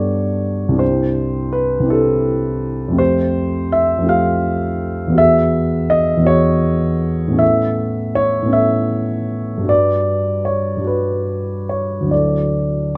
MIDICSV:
0, 0, Header, 1, 2, 480
1, 0, Start_track
1, 0, Tempo, 731707
1, 531, Time_signature, 6, 3, 24, 8
1, 3886, Tempo, 748130
1, 5806, Tempo, 777202
1, 6766, Tempo, 831025
1, 8210, End_track
2, 0, Start_track
2, 0, Title_t, "Grand piano"
2, 0, Program_c, 0, 0
2, 0, Control_c, 0, 64, 127
2, 0, Note_on_c, 0, 43, 35
2, 0, Note_on_c, 0, 59, 31
2, 0, Note_on_c, 0, 62, 29
2, 0, Note_on_c, 0, 67, 27
2, 0, Note_on_c, 0, 69, 29
2, 0, Note_on_c, 0, 73, 65
2, 0, Note_on_c, 0, 74, 53
2, 449, Note_on_c, 0, 36, 40
2, 463, Note_off_c, 0, 43, 0
2, 464, Note_on_c, 0, 60, 30
2, 469, Note_off_c, 0, 62, 0
2, 471, Note_off_c, 0, 59, 0
2, 479, Note_on_c, 0, 62, 32
2, 488, Note_off_c, 0, 67, 0
2, 497, Note_off_c, 0, 69, 0
2, 499, Note_on_c, 0, 64, 31
2, 517, Note_on_c, 0, 67, 28
2, 518, Note_on_c, 0, 72, 67
2, 519, Note_off_c, 0, 74, 0
2, 542, Control_c, 0, 64, 0
2, 544, Note_off_c, 0, 73, 0
2, 662, Control_c, 0, 64, 127
2, 1001, Note_on_c, 0, 71, 65
2, 1013, Note_off_c, 0, 72, 0
2, 1169, Note_off_c, 0, 36, 0
2, 1179, Note_on_c, 0, 36, 35
2, 1187, Note_off_c, 0, 60, 0
2, 1197, Note_on_c, 0, 60, 33
2, 1202, Note_off_c, 0, 62, 0
2, 1212, Note_on_c, 0, 62, 33
2, 1219, Note_off_c, 0, 64, 0
2, 1229, Note_off_c, 0, 67, 0
2, 1229, Note_on_c, 0, 64, 33
2, 1247, Note_on_c, 0, 67, 30
2, 1248, Note_on_c, 0, 69, 67
2, 1249, Note_off_c, 0, 71, 0
2, 1892, Note_on_c, 0, 41, 41
2, 1905, Note_off_c, 0, 36, 0
2, 1905, Note_on_c, 0, 57, 33
2, 1910, Note_off_c, 0, 60, 0
2, 1920, Note_on_c, 0, 60, 34
2, 1922, Note_off_c, 0, 62, 0
2, 1930, Note_off_c, 0, 64, 0
2, 1940, Note_off_c, 0, 67, 0
2, 1941, Note_on_c, 0, 65, 33
2, 1954, Note_on_c, 0, 67, 38
2, 1958, Note_on_c, 0, 72, 73
2, 1962, Note_off_c, 0, 69, 0
2, 1976, Control_c, 0, 64, 0
2, 2075, Control_c, 0, 64, 127
2, 2443, Note_off_c, 0, 72, 0
2, 2443, Note_on_c, 0, 76, 77
2, 2603, Note_off_c, 0, 41, 0
2, 2613, Note_on_c, 0, 41, 41
2, 2620, Note_off_c, 0, 57, 0
2, 2630, Note_on_c, 0, 57, 35
2, 2637, Note_off_c, 0, 60, 0
2, 2647, Note_on_c, 0, 60, 33
2, 2652, Note_off_c, 0, 65, 0
2, 2659, Note_off_c, 0, 67, 0
2, 2663, Note_on_c, 0, 65, 38
2, 2679, Note_on_c, 0, 67, 36
2, 2682, Note_on_c, 0, 77, 75
2, 2685, Note_off_c, 0, 76, 0
2, 3329, Note_on_c, 0, 40, 38
2, 3344, Note_off_c, 0, 41, 0
2, 3345, Note_on_c, 0, 59, 36
2, 3353, Note_off_c, 0, 57, 0
2, 3361, Note_off_c, 0, 60, 0
2, 3362, Note_on_c, 0, 64, 34
2, 3369, Note_off_c, 0, 65, 0
2, 3374, Note_on_c, 0, 66, 38
2, 3378, Note_off_c, 0, 67, 0
2, 3397, Note_on_c, 0, 68, 36
2, 3397, Note_on_c, 0, 76, 82
2, 3401, Note_off_c, 0, 77, 0
2, 3413, Control_c, 0, 64, 0
2, 3516, Control_c, 0, 64, 127
2, 3870, Note_on_c, 0, 75, 81
2, 3883, Note_off_c, 0, 76, 0
2, 4034, Note_off_c, 0, 40, 0
2, 4044, Note_on_c, 0, 40, 40
2, 4047, Note_off_c, 0, 59, 0
2, 4057, Note_on_c, 0, 59, 34
2, 4065, Note_off_c, 0, 64, 0
2, 4075, Note_on_c, 0, 64, 36
2, 4078, Note_off_c, 0, 66, 0
2, 4088, Note_on_c, 0, 66, 37
2, 4098, Note_off_c, 0, 68, 0
2, 4105, Note_on_c, 0, 73, 77
2, 4108, Note_on_c, 0, 68, 37
2, 4118, Note_off_c, 0, 75, 0
2, 4754, Note_on_c, 0, 45, 38
2, 4759, Note_off_c, 0, 59, 0
2, 4769, Note_on_c, 0, 59, 32
2, 4777, Note_off_c, 0, 40, 0
2, 4788, Note_on_c, 0, 61, 34
2, 4793, Note_off_c, 0, 64, 0
2, 4799, Note_off_c, 0, 66, 0
2, 4805, Note_on_c, 0, 64, 35
2, 4810, Note_off_c, 0, 68, 0
2, 4821, Note_on_c, 0, 69, 31
2, 4824, Note_on_c, 0, 76, 78
2, 4830, Note_off_c, 0, 73, 0
2, 4850, Control_c, 0, 64, 0
2, 4961, Control_c, 0, 64, 127
2, 5316, Note_off_c, 0, 76, 0
2, 5317, Note_on_c, 0, 73, 75
2, 5480, Note_off_c, 0, 45, 0
2, 5490, Note_on_c, 0, 45, 37
2, 5498, Note_off_c, 0, 59, 0
2, 5508, Note_on_c, 0, 59, 32
2, 5513, Note_off_c, 0, 61, 0
2, 5523, Note_on_c, 0, 61, 33
2, 5524, Note_off_c, 0, 64, 0
2, 5532, Note_off_c, 0, 69, 0
2, 5540, Note_on_c, 0, 64, 34
2, 5557, Note_on_c, 0, 69, 33
2, 5557, Note_on_c, 0, 76, 75
2, 5561, Note_off_c, 0, 73, 0
2, 6213, Note_on_c, 0, 43, 36
2, 6225, Note_off_c, 0, 45, 0
2, 6233, Note_on_c, 0, 55, 28
2, 6234, Note_off_c, 0, 59, 0
2, 6242, Note_off_c, 0, 61, 0
2, 6244, Note_on_c, 0, 62, 29
2, 6250, Note_off_c, 0, 64, 0
2, 6259, Note_off_c, 0, 69, 0
2, 6261, Note_on_c, 0, 66, 32
2, 6280, Note_off_c, 0, 76, 0
2, 6280, Note_on_c, 0, 71, 30
2, 6284, Note_on_c, 0, 74, 71
2, 6294, Control_c, 0, 64, 0
2, 6402, Control_c, 0, 64, 127
2, 6754, Note_on_c, 0, 73, 60
2, 6766, Note_off_c, 0, 74, 0
2, 6928, Note_off_c, 0, 43, 0
2, 6937, Note_on_c, 0, 43, 31
2, 6943, Note_off_c, 0, 55, 0
2, 6952, Note_on_c, 0, 55, 27
2, 6957, Note_off_c, 0, 62, 0
2, 6966, Note_on_c, 0, 62, 27
2, 6969, Note_off_c, 0, 66, 0
2, 6978, Note_off_c, 0, 71, 0
2, 6980, Note_on_c, 0, 66, 29
2, 6994, Note_off_c, 0, 73, 0
2, 6998, Note_on_c, 0, 71, 56
2, 7472, Note_off_c, 0, 71, 0
2, 7473, Note_on_c, 0, 73, 53
2, 7654, Note_on_c, 0, 38, 31
2, 7661, Note_off_c, 0, 43, 0
2, 7665, Note_on_c, 0, 54, 23
2, 7668, Note_off_c, 0, 55, 0
2, 7675, Note_off_c, 0, 62, 0
2, 7683, Note_off_c, 0, 66, 0
2, 7684, Note_on_c, 0, 62, 26
2, 7699, Note_on_c, 0, 64, 24
2, 7712, Note_on_c, 0, 69, 24
2, 7714, Note_off_c, 0, 73, 0
2, 7714, Note_on_c, 0, 74, 50
2, 7724, Control_c, 0, 64, 0
2, 7847, Control_c, 0, 64, 127
2, 8202, Note_off_c, 0, 74, 0
2, 8210, Note_off_c, 0, 38, 0
2, 8210, Note_off_c, 0, 54, 0
2, 8210, Note_off_c, 0, 62, 0
2, 8210, Note_off_c, 0, 64, 0
2, 8210, Note_off_c, 0, 69, 0
2, 8210, End_track
0, 0, End_of_file